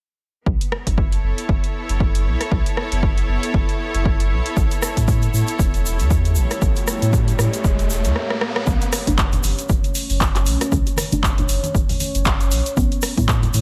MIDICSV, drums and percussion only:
0, 0, Header, 1, 2, 480
1, 0, Start_track
1, 0, Key_signature, 2, "minor"
1, 0, Tempo, 512821
1, 434, Time_signature, 4, 2, 24, 8
1, 12739, End_track
2, 0, Start_track
2, 0, Title_t, "Drums"
2, 434, Note_on_c, 9, 36, 110
2, 528, Note_off_c, 9, 36, 0
2, 572, Note_on_c, 9, 42, 51
2, 666, Note_off_c, 9, 42, 0
2, 675, Note_on_c, 9, 37, 76
2, 768, Note_off_c, 9, 37, 0
2, 812, Note_on_c, 9, 36, 56
2, 812, Note_on_c, 9, 42, 69
2, 905, Note_off_c, 9, 36, 0
2, 906, Note_off_c, 9, 42, 0
2, 914, Note_on_c, 9, 36, 110
2, 1008, Note_off_c, 9, 36, 0
2, 1052, Note_on_c, 9, 42, 36
2, 1146, Note_off_c, 9, 42, 0
2, 1292, Note_on_c, 9, 42, 64
2, 1386, Note_off_c, 9, 42, 0
2, 1394, Note_on_c, 9, 36, 110
2, 1488, Note_off_c, 9, 36, 0
2, 1532, Note_on_c, 9, 42, 36
2, 1626, Note_off_c, 9, 42, 0
2, 1772, Note_on_c, 9, 42, 64
2, 1866, Note_off_c, 9, 42, 0
2, 1875, Note_on_c, 9, 36, 118
2, 1968, Note_off_c, 9, 36, 0
2, 2012, Note_on_c, 9, 42, 52
2, 2106, Note_off_c, 9, 42, 0
2, 2252, Note_on_c, 9, 37, 60
2, 2252, Note_on_c, 9, 42, 65
2, 2346, Note_off_c, 9, 37, 0
2, 2346, Note_off_c, 9, 42, 0
2, 2355, Note_on_c, 9, 36, 116
2, 2448, Note_off_c, 9, 36, 0
2, 2492, Note_on_c, 9, 42, 49
2, 2586, Note_off_c, 9, 42, 0
2, 2595, Note_on_c, 9, 37, 73
2, 2688, Note_off_c, 9, 37, 0
2, 2732, Note_on_c, 9, 42, 63
2, 2826, Note_off_c, 9, 42, 0
2, 2835, Note_on_c, 9, 36, 115
2, 2928, Note_off_c, 9, 36, 0
2, 2972, Note_on_c, 9, 42, 37
2, 3066, Note_off_c, 9, 42, 0
2, 3212, Note_on_c, 9, 42, 63
2, 3306, Note_off_c, 9, 42, 0
2, 3315, Note_on_c, 9, 36, 116
2, 3408, Note_off_c, 9, 36, 0
2, 3452, Note_on_c, 9, 42, 37
2, 3546, Note_off_c, 9, 42, 0
2, 3692, Note_on_c, 9, 42, 64
2, 3786, Note_off_c, 9, 42, 0
2, 3795, Note_on_c, 9, 36, 120
2, 3888, Note_off_c, 9, 36, 0
2, 3932, Note_on_c, 9, 42, 53
2, 4026, Note_off_c, 9, 42, 0
2, 4172, Note_on_c, 9, 42, 65
2, 4266, Note_off_c, 9, 42, 0
2, 4275, Note_on_c, 9, 36, 119
2, 4276, Note_on_c, 9, 82, 51
2, 4368, Note_off_c, 9, 36, 0
2, 4370, Note_off_c, 9, 82, 0
2, 4408, Note_on_c, 9, 82, 26
2, 4412, Note_on_c, 9, 42, 50
2, 4502, Note_off_c, 9, 82, 0
2, 4506, Note_off_c, 9, 42, 0
2, 4515, Note_on_c, 9, 37, 75
2, 4517, Note_on_c, 9, 82, 99
2, 4608, Note_off_c, 9, 37, 0
2, 4610, Note_off_c, 9, 82, 0
2, 4652, Note_on_c, 9, 36, 62
2, 4652, Note_on_c, 9, 42, 64
2, 4657, Note_on_c, 9, 82, 41
2, 4746, Note_off_c, 9, 36, 0
2, 4746, Note_off_c, 9, 42, 0
2, 4751, Note_off_c, 9, 82, 0
2, 4753, Note_on_c, 9, 82, 54
2, 4754, Note_on_c, 9, 36, 116
2, 4847, Note_off_c, 9, 82, 0
2, 4848, Note_off_c, 9, 36, 0
2, 4888, Note_on_c, 9, 82, 26
2, 4893, Note_on_c, 9, 42, 34
2, 4982, Note_off_c, 9, 82, 0
2, 4986, Note_off_c, 9, 42, 0
2, 4999, Note_on_c, 9, 82, 97
2, 5092, Note_off_c, 9, 82, 0
2, 5123, Note_on_c, 9, 82, 38
2, 5132, Note_on_c, 9, 42, 61
2, 5216, Note_off_c, 9, 82, 0
2, 5226, Note_off_c, 9, 42, 0
2, 5234, Note_on_c, 9, 36, 118
2, 5237, Note_on_c, 9, 82, 58
2, 5328, Note_off_c, 9, 36, 0
2, 5331, Note_off_c, 9, 82, 0
2, 5372, Note_on_c, 9, 42, 35
2, 5375, Note_on_c, 9, 82, 26
2, 5466, Note_off_c, 9, 42, 0
2, 5469, Note_off_c, 9, 82, 0
2, 5484, Note_on_c, 9, 82, 85
2, 5578, Note_off_c, 9, 82, 0
2, 5609, Note_on_c, 9, 82, 39
2, 5612, Note_on_c, 9, 42, 64
2, 5703, Note_off_c, 9, 82, 0
2, 5706, Note_off_c, 9, 42, 0
2, 5714, Note_on_c, 9, 36, 120
2, 5715, Note_on_c, 9, 82, 58
2, 5808, Note_off_c, 9, 36, 0
2, 5809, Note_off_c, 9, 82, 0
2, 5849, Note_on_c, 9, 82, 27
2, 5853, Note_on_c, 9, 42, 49
2, 5942, Note_off_c, 9, 82, 0
2, 5946, Note_off_c, 9, 42, 0
2, 5947, Note_on_c, 9, 82, 86
2, 6040, Note_off_c, 9, 82, 0
2, 6092, Note_on_c, 9, 37, 57
2, 6092, Note_on_c, 9, 42, 61
2, 6092, Note_on_c, 9, 82, 36
2, 6186, Note_off_c, 9, 37, 0
2, 6186, Note_off_c, 9, 42, 0
2, 6186, Note_off_c, 9, 82, 0
2, 6192, Note_on_c, 9, 82, 53
2, 6194, Note_on_c, 9, 36, 121
2, 6286, Note_off_c, 9, 82, 0
2, 6288, Note_off_c, 9, 36, 0
2, 6325, Note_on_c, 9, 82, 27
2, 6333, Note_on_c, 9, 42, 47
2, 6419, Note_off_c, 9, 82, 0
2, 6426, Note_off_c, 9, 42, 0
2, 6434, Note_on_c, 9, 82, 98
2, 6435, Note_on_c, 9, 37, 75
2, 6527, Note_off_c, 9, 82, 0
2, 6528, Note_off_c, 9, 37, 0
2, 6573, Note_on_c, 9, 42, 62
2, 6574, Note_on_c, 9, 82, 37
2, 6666, Note_off_c, 9, 42, 0
2, 6668, Note_off_c, 9, 82, 0
2, 6674, Note_on_c, 9, 36, 114
2, 6675, Note_on_c, 9, 82, 57
2, 6768, Note_off_c, 9, 36, 0
2, 6769, Note_off_c, 9, 82, 0
2, 6812, Note_on_c, 9, 42, 35
2, 6819, Note_on_c, 9, 82, 28
2, 6906, Note_off_c, 9, 42, 0
2, 6913, Note_off_c, 9, 82, 0
2, 6915, Note_on_c, 9, 37, 75
2, 6919, Note_on_c, 9, 82, 84
2, 7008, Note_off_c, 9, 37, 0
2, 7013, Note_off_c, 9, 82, 0
2, 7052, Note_on_c, 9, 42, 64
2, 7053, Note_on_c, 9, 82, 39
2, 7146, Note_off_c, 9, 42, 0
2, 7147, Note_off_c, 9, 82, 0
2, 7154, Note_on_c, 9, 36, 118
2, 7155, Note_on_c, 9, 82, 50
2, 7248, Note_off_c, 9, 36, 0
2, 7248, Note_off_c, 9, 82, 0
2, 7292, Note_on_c, 9, 42, 35
2, 7294, Note_on_c, 9, 82, 26
2, 7386, Note_off_c, 9, 42, 0
2, 7388, Note_off_c, 9, 82, 0
2, 7394, Note_on_c, 9, 82, 84
2, 7488, Note_off_c, 9, 82, 0
2, 7530, Note_on_c, 9, 82, 38
2, 7532, Note_on_c, 9, 42, 58
2, 7624, Note_off_c, 9, 82, 0
2, 7626, Note_off_c, 9, 42, 0
2, 7635, Note_on_c, 9, 37, 59
2, 7728, Note_off_c, 9, 37, 0
2, 7772, Note_on_c, 9, 37, 65
2, 7866, Note_off_c, 9, 37, 0
2, 7874, Note_on_c, 9, 37, 83
2, 7968, Note_off_c, 9, 37, 0
2, 8012, Note_on_c, 9, 37, 79
2, 8106, Note_off_c, 9, 37, 0
2, 8114, Note_on_c, 9, 36, 116
2, 8114, Note_on_c, 9, 82, 54
2, 8207, Note_off_c, 9, 82, 0
2, 8208, Note_off_c, 9, 36, 0
2, 8251, Note_on_c, 9, 82, 29
2, 8252, Note_on_c, 9, 42, 53
2, 8344, Note_off_c, 9, 82, 0
2, 8346, Note_off_c, 9, 42, 0
2, 8354, Note_on_c, 9, 37, 79
2, 8354, Note_on_c, 9, 46, 106
2, 8356, Note_on_c, 9, 82, 98
2, 8448, Note_off_c, 9, 37, 0
2, 8448, Note_off_c, 9, 46, 0
2, 8449, Note_off_c, 9, 82, 0
2, 8484, Note_on_c, 9, 60, 36
2, 8492, Note_on_c, 9, 36, 57
2, 8492, Note_on_c, 9, 42, 69
2, 8494, Note_on_c, 9, 82, 36
2, 8578, Note_off_c, 9, 60, 0
2, 8586, Note_off_c, 9, 36, 0
2, 8586, Note_off_c, 9, 42, 0
2, 8588, Note_off_c, 9, 82, 0
2, 8593, Note_on_c, 9, 82, 51
2, 8594, Note_on_c, 9, 36, 112
2, 8596, Note_on_c, 9, 39, 121
2, 8686, Note_off_c, 9, 82, 0
2, 8688, Note_off_c, 9, 36, 0
2, 8690, Note_off_c, 9, 39, 0
2, 8728, Note_on_c, 9, 82, 26
2, 8731, Note_on_c, 9, 64, 76
2, 8732, Note_on_c, 9, 42, 39
2, 8822, Note_off_c, 9, 82, 0
2, 8825, Note_off_c, 9, 64, 0
2, 8826, Note_off_c, 9, 42, 0
2, 8832, Note_on_c, 9, 82, 91
2, 8834, Note_on_c, 9, 63, 54
2, 8835, Note_on_c, 9, 46, 102
2, 8926, Note_off_c, 9, 82, 0
2, 8927, Note_off_c, 9, 63, 0
2, 8928, Note_off_c, 9, 46, 0
2, 8972, Note_on_c, 9, 42, 70
2, 8972, Note_on_c, 9, 82, 40
2, 9065, Note_off_c, 9, 82, 0
2, 9066, Note_off_c, 9, 42, 0
2, 9071, Note_on_c, 9, 82, 58
2, 9073, Note_on_c, 9, 63, 71
2, 9074, Note_on_c, 9, 36, 119
2, 9164, Note_off_c, 9, 82, 0
2, 9167, Note_off_c, 9, 63, 0
2, 9168, Note_off_c, 9, 36, 0
2, 9210, Note_on_c, 9, 82, 25
2, 9212, Note_on_c, 9, 42, 38
2, 9303, Note_off_c, 9, 82, 0
2, 9306, Note_off_c, 9, 42, 0
2, 9313, Note_on_c, 9, 82, 89
2, 9315, Note_on_c, 9, 46, 97
2, 9406, Note_off_c, 9, 82, 0
2, 9408, Note_off_c, 9, 46, 0
2, 9452, Note_on_c, 9, 46, 61
2, 9452, Note_on_c, 9, 82, 42
2, 9545, Note_off_c, 9, 82, 0
2, 9546, Note_off_c, 9, 46, 0
2, 9554, Note_on_c, 9, 36, 116
2, 9554, Note_on_c, 9, 82, 50
2, 9556, Note_on_c, 9, 39, 122
2, 9647, Note_off_c, 9, 82, 0
2, 9648, Note_off_c, 9, 36, 0
2, 9650, Note_off_c, 9, 39, 0
2, 9691, Note_on_c, 9, 60, 67
2, 9692, Note_on_c, 9, 82, 26
2, 9693, Note_on_c, 9, 42, 55
2, 9694, Note_on_c, 9, 39, 40
2, 9785, Note_off_c, 9, 60, 0
2, 9785, Note_off_c, 9, 82, 0
2, 9786, Note_off_c, 9, 42, 0
2, 9788, Note_off_c, 9, 39, 0
2, 9791, Note_on_c, 9, 82, 87
2, 9795, Note_on_c, 9, 46, 106
2, 9885, Note_off_c, 9, 82, 0
2, 9888, Note_off_c, 9, 46, 0
2, 9932, Note_on_c, 9, 37, 64
2, 9932, Note_on_c, 9, 42, 67
2, 9933, Note_on_c, 9, 82, 42
2, 9936, Note_on_c, 9, 60, 66
2, 10026, Note_off_c, 9, 37, 0
2, 10026, Note_off_c, 9, 42, 0
2, 10026, Note_off_c, 9, 82, 0
2, 10030, Note_off_c, 9, 60, 0
2, 10034, Note_on_c, 9, 36, 122
2, 10035, Note_on_c, 9, 82, 57
2, 10128, Note_off_c, 9, 36, 0
2, 10129, Note_off_c, 9, 82, 0
2, 10169, Note_on_c, 9, 60, 34
2, 10170, Note_on_c, 9, 82, 26
2, 10172, Note_on_c, 9, 42, 53
2, 10263, Note_off_c, 9, 60, 0
2, 10263, Note_on_c, 9, 63, 63
2, 10264, Note_off_c, 9, 82, 0
2, 10266, Note_off_c, 9, 42, 0
2, 10274, Note_on_c, 9, 37, 77
2, 10274, Note_on_c, 9, 46, 109
2, 10276, Note_on_c, 9, 82, 96
2, 10356, Note_off_c, 9, 63, 0
2, 10368, Note_off_c, 9, 37, 0
2, 10368, Note_off_c, 9, 46, 0
2, 10370, Note_off_c, 9, 82, 0
2, 10411, Note_on_c, 9, 82, 42
2, 10412, Note_on_c, 9, 42, 68
2, 10423, Note_on_c, 9, 60, 34
2, 10504, Note_off_c, 9, 82, 0
2, 10506, Note_off_c, 9, 42, 0
2, 10514, Note_on_c, 9, 36, 119
2, 10516, Note_on_c, 9, 39, 125
2, 10517, Note_off_c, 9, 60, 0
2, 10524, Note_on_c, 9, 82, 53
2, 10608, Note_off_c, 9, 36, 0
2, 10610, Note_off_c, 9, 39, 0
2, 10618, Note_off_c, 9, 82, 0
2, 10652, Note_on_c, 9, 42, 38
2, 10653, Note_on_c, 9, 82, 26
2, 10656, Note_on_c, 9, 64, 79
2, 10746, Note_off_c, 9, 42, 0
2, 10746, Note_off_c, 9, 82, 0
2, 10749, Note_off_c, 9, 64, 0
2, 10753, Note_on_c, 9, 82, 88
2, 10755, Note_on_c, 9, 46, 107
2, 10847, Note_off_c, 9, 82, 0
2, 10848, Note_off_c, 9, 46, 0
2, 10887, Note_on_c, 9, 63, 76
2, 10892, Note_on_c, 9, 42, 65
2, 10896, Note_on_c, 9, 82, 39
2, 10981, Note_off_c, 9, 63, 0
2, 10986, Note_off_c, 9, 42, 0
2, 10989, Note_off_c, 9, 82, 0
2, 10994, Note_on_c, 9, 36, 118
2, 10998, Note_on_c, 9, 82, 49
2, 11088, Note_off_c, 9, 36, 0
2, 11092, Note_off_c, 9, 82, 0
2, 11132, Note_on_c, 9, 46, 64
2, 11133, Note_on_c, 9, 64, 78
2, 11134, Note_on_c, 9, 82, 29
2, 11226, Note_off_c, 9, 46, 0
2, 11227, Note_off_c, 9, 64, 0
2, 11228, Note_off_c, 9, 82, 0
2, 11231, Note_on_c, 9, 63, 63
2, 11232, Note_on_c, 9, 82, 89
2, 11234, Note_on_c, 9, 46, 108
2, 11325, Note_off_c, 9, 63, 0
2, 11326, Note_off_c, 9, 82, 0
2, 11328, Note_off_c, 9, 46, 0
2, 11369, Note_on_c, 9, 82, 41
2, 11372, Note_on_c, 9, 42, 65
2, 11463, Note_off_c, 9, 82, 0
2, 11465, Note_off_c, 9, 42, 0
2, 11467, Note_on_c, 9, 82, 53
2, 11474, Note_on_c, 9, 36, 126
2, 11476, Note_on_c, 9, 39, 127
2, 11561, Note_off_c, 9, 82, 0
2, 11568, Note_off_c, 9, 36, 0
2, 11569, Note_off_c, 9, 39, 0
2, 11611, Note_on_c, 9, 82, 28
2, 11612, Note_on_c, 9, 42, 52
2, 11704, Note_off_c, 9, 82, 0
2, 11705, Note_off_c, 9, 42, 0
2, 11714, Note_on_c, 9, 46, 111
2, 11714, Note_on_c, 9, 82, 95
2, 11807, Note_off_c, 9, 82, 0
2, 11808, Note_off_c, 9, 46, 0
2, 11849, Note_on_c, 9, 82, 43
2, 11852, Note_on_c, 9, 42, 64
2, 11943, Note_off_c, 9, 82, 0
2, 11945, Note_off_c, 9, 42, 0
2, 11953, Note_on_c, 9, 82, 56
2, 11954, Note_on_c, 9, 36, 126
2, 12047, Note_off_c, 9, 36, 0
2, 12047, Note_off_c, 9, 82, 0
2, 12089, Note_on_c, 9, 82, 27
2, 12091, Note_on_c, 9, 42, 49
2, 12183, Note_off_c, 9, 82, 0
2, 12185, Note_off_c, 9, 42, 0
2, 12186, Note_on_c, 9, 82, 100
2, 12194, Note_on_c, 9, 37, 73
2, 12194, Note_on_c, 9, 46, 114
2, 12280, Note_off_c, 9, 82, 0
2, 12288, Note_off_c, 9, 37, 0
2, 12288, Note_off_c, 9, 46, 0
2, 12331, Note_on_c, 9, 36, 60
2, 12332, Note_on_c, 9, 42, 64
2, 12332, Note_on_c, 9, 60, 37
2, 12337, Note_on_c, 9, 82, 43
2, 12425, Note_off_c, 9, 36, 0
2, 12425, Note_off_c, 9, 42, 0
2, 12425, Note_off_c, 9, 60, 0
2, 12431, Note_off_c, 9, 82, 0
2, 12434, Note_on_c, 9, 36, 118
2, 12435, Note_on_c, 9, 39, 115
2, 12436, Note_on_c, 9, 82, 50
2, 12527, Note_off_c, 9, 36, 0
2, 12529, Note_off_c, 9, 39, 0
2, 12530, Note_off_c, 9, 82, 0
2, 12567, Note_on_c, 9, 64, 81
2, 12569, Note_on_c, 9, 82, 28
2, 12571, Note_on_c, 9, 42, 36
2, 12661, Note_off_c, 9, 64, 0
2, 12662, Note_off_c, 9, 82, 0
2, 12665, Note_off_c, 9, 42, 0
2, 12670, Note_on_c, 9, 82, 94
2, 12674, Note_on_c, 9, 46, 107
2, 12676, Note_on_c, 9, 63, 65
2, 12739, Note_off_c, 9, 46, 0
2, 12739, Note_off_c, 9, 63, 0
2, 12739, Note_off_c, 9, 82, 0
2, 12739, End_track
0, 0, End_of_file